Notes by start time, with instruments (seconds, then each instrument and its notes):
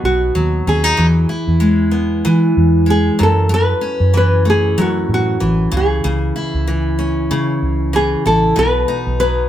Already playing: steel-string acoustic guitar B2 F#3 B3 D#4
0.04 fingered electric bass B1, nylon-string guitar F#4
0.35 fingered electric bass D#2, steel-string acoustic guitar F#3
0.67 fingered electric bass D#2, steel-string acoustic guitar C#4, nylon-string guitar G#4
0.84 steel-string acoustic guitar D#4
0.97 fingered electric bass E2, steel-string acoustic guitar E3
1.29 steel-string acoustic guitar E4
1.47 fingered electric bass E2
1.60 steel-string acoustic guitar G#3
1.91 steel-string acoustic guitar B3
2.25 steel-string acoustic guitar E3, fingered electric bass E3
2.57 fingered electric bass E2
2.86 steel-string acoustic guitar G#3
2.90 nylon-string guitar G#4
3.19 steel-string acoustic guitar F#2, fingered electric bass F#2
3.23 nylon-string guitar A4
3.49 steel-string acoustic guitar F#2
3.54 nylon-string guitar B4
3.81 steel-string acoustic guitar C#4
4.00 fingered electric bass F#2
4.14 steel-string acoustic guitar E3, nylon-string guitar B4
4.45 steel-string acoustic guitar A3
4.50 nylon-string guitar G#4
4.78 steel-string acoustic guitar F#2, fingered electric bass F#3, nylon-string guitar F#4
5.09 fingered electric bass A2
5.14 nylon-string guitar F#4
5.40 fingered electric bass A1, steel-string acoustic guitar E3
5.72 fingered electric bass C#2, steel-string acoustic guitar C#3
5.77 nylon-string guitar G#4
6.04 fingered electric bass C#2, steel-string acoustic guitar C#3
6.36 steel-string acoustic guitar E4
6.54 fingered electric bass C#2
6.67 steel-string acoustic guitar E3
6.99 steel-string acoustic guitar C#4
7.31 steel-string acoustic guitar C#3, fingered electric bass C#3
7.62 fingered electric bass C#2
7.93 steel-string acoustic guitar E3, nylon-string guitar G#4
8.26 fingered electric bass A1, steel-string acoustic guitar E4, nylon-string guitar A4
8.56 fingered electric bass B1, steel-string acoustic guitar B2, nylon-string guitar B4
8.88 steel-string acoustic guitar D#4
9.07 fingered electric bass B1
9.20 steel-string acoustic guitar F#3, nylon-string guitar B4